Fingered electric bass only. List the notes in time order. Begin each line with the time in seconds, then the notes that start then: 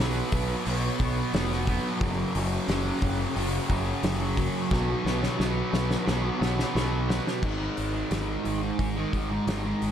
0.00 B1
0.32 B1
0.67 B1
1.00 B1
1.34 F1
2.01 F#1
2.35 F#1
2.68 F#1
3.02 F#1
3.36 F#1
3.70 F#1
4.03 F#1
4.72 B1
5.05 B1
5.39 B1
5.73 B1
6.07 B1
6.41 B1
6.75 B1
7.43 G#1
7.78 G#1
8.11 G#1
8.46 G#1
8.79 G#1
9.13 G#1
9.47 G#1
9.82 G#1